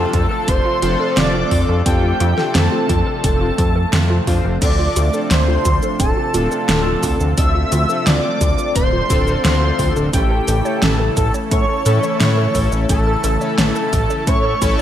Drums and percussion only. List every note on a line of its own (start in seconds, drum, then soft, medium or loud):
0.13 kick loud
0.13 closed hi-hat medium
0.48 kick loud
0.48 closed hi-hat medium
0.82 closed hi-hat medium
1.17 snare loud
1.17 closed hi-hat medium
1.51 kick medium
1.51 open hi-hat medium
1.86 kick loud
1.86 closed hi-hat loud
2.20 closed hi-hat medium
2.38 snare soft
2.55 snare loud
2.55 closed hi-hat medium
2.89 kick loud
2.89 closed hi-hat medium
3.24 kick loud
3.24 closed hi-hat medium
3.58 kick loud
3.58 closed hi-hat medium
3.93 snare loud
3.93 closed hi-hat medium
4.27 kick medium
4.27 open hi-hat medium
4.62 kick loud
4.62 closed hi-hat loud
4.62 crash medium
4.62 shaker soft
4.96 closed hi-hat medium
4.96 shaker medium
5.14 shaker soft
5.31 snare loud
5.31 closed hi-hat loud
5.31 shaker soft
5.65 kick loud
5.65 closed hi-hat medium
5.65 shaker medium
5.82 shaker soft
6.00 kick loud
6.00 closed hi-hat medium
6.00 shaker soft
6.34 closed hi-hat medium
6.34 shaker medium
6.51 shaker soft
6.69 snare loud
6.69 closed hi-hat loud
6.69 shaker soft
7.03 kick medium
7.03 open hi-hat medium
7.03 shaker medium
7.20 shaker soft
7.38 kick loud
7.38 closed hi-hat loud
7.38 shaker soft
7.72 closed hi-hat medium
7.72 shaker medium
7.89 shaker soft
8.07 snare loud
8.07 closed hi-hat loud
8.07 shaker soft
8.41 kick loud
8.41 closed hi-hat medium
8.41 shaker medium
8.58 shaker soft
8.76 kick loud
8.76 closed hi-hat loud
8.76 shaker soft
9.10 kick loud
9.10 closed hi-hat medium
9.10 shaker medium
9.27 shaker soft
9.45 snare loud
9.45 closed hi-hat loud
9.45 shaker soft
9.79 kick medium
9.79 open hi-hat medium
9.79 shaker medium
9.96 shaker soft
10.13 kick loud
10.13 closed hi-hat loud
10.13 shaker soft
10.48 closed hi-hat medium
10.48 shaker medium
10.65 shaker soft
10.82 snare loud
10.82 closed hi-hat loud
10.82 shaker soft
11.17 kick loud
11.17 closed hi-hat medium
11.17 shaker medium
11.34 shaker soft
11.51 kick loud
11.51 closed hi-hat medium
11.51 shaker soft
11.86 closed hi-hat medium
11.86 shaker medium
12.03 shaker soft
12.20 snare loud
12.20 closed hi-hat medium
12.20 shaker soft
12.55 kick medium
12.55 open hi-hat medium
12.55 shaker medium
12.72 shaker soft
12.89 kick loud
12.89 closed hi-hat medium
12.89 shaker soft
13.24 closed hi-hat medium
13.24 shaker medium
13.41 shaker soft
13.58 snare loud
13.58 closed hi-hat medium
13.58 shaker soft
13.76 shaker soft
13.93 kick loud
13.93 closed hi-hat medium
13.93 shaker medium
14.10 shaker soft
14.27 kick loud
14.27 closed hi-hat medium
14.27 shaker soft
14.62 kick loud
14.62 closed hi-hat medium
14.62 shaker medium